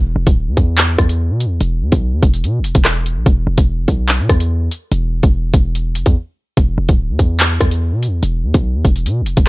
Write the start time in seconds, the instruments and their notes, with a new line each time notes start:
Already playing: 808-style bass E1
0.16 808-style bass E1
0.27 808-style bass D1, kick, closed hi-hat
0.47 808-style bass E2
0.57 808-style bass E2, kick, closed hi-hat
0.78 clap, closed hi-hat
0.98 808-style bass E2, kick, cross-stick, closed hi-hat
1.09 closed hi-hat
1.30 808-style bass B2
1.40 closed hi-hat
1.46 808-style bass E2
1.61 808-style bass E1, closed hi-hat
1.81 808-style bass E2
1.92 808-style bass B1, kick, closed hi-hat
2.13 808-style bass E2
2.23 808-style bass E1, kick, closed hi-hat
2.34 closed hi-hat
2.43 808-style bass B2, closed hi-hat
2.59 808-style bass E1
2.64 closed hi-hat
2.75 808-style bass E1, kick, closed hi-hat
2.85 cross-stick, clap
3.06 closed hi-hat
3.16 808-style bass B1
3.26 808-style bass E1, kick, closed hi-hat
3.47 808-style bass E1
3.58 808-style bass E1, kick, closed hi-hat
3.78 808-style bass F1
3.88 808-style bass B1, kick, closed hi-hat
4.09 clap, closed hi-hat
4.20 808-style bass B2
4.29 808-style bass E2, kick, cross-stick, closed hi-hat
4.40 closed hi-hat
4.71 closed hi-hat
4.92 808-style bass E1, closed hi-hat
5.23 808-style bass E1, kick, closed hi-hat
5.54 808-style bass E1, kick, closed hi-hat
5.75 closed hi-hat
5.95 808-style bass F1, closed hi-hat
6.06 808-style bass E2, kick, closed hi-hat
6.57 808-style bass E1, kick, closed hi-hat
6.78 808-style bass E1
6.89 808-style bass D1, kick, closed hi-hat
7.09 808-style bass E2
7.19 808-style bass E2, kick, closed hi-hat
7.40 clap, closed hi-hat
7.61 808-style bass E2, kick, cross-stick, closed hi-hat
7.71 closed hi-hat
7.92 808-style bass B2
8.03 closed hi-hat
8.07 808-style bass E2
8.23 808-style bass E1, closed hi-hat
8.43 808-style bass E2
8.54 808-style bass B1, kick, closed hi-hat
8.75 808-style bass E2
8.85 808-style bass E1, kick, closed hi-hat
8.96 closed hi-hat
9.05 808-style bass B2, closed hi-hat
9.21 808-style bass E1
9.26 closed hi-hat
9.37 808-style bass E1, kick, closed hi-hat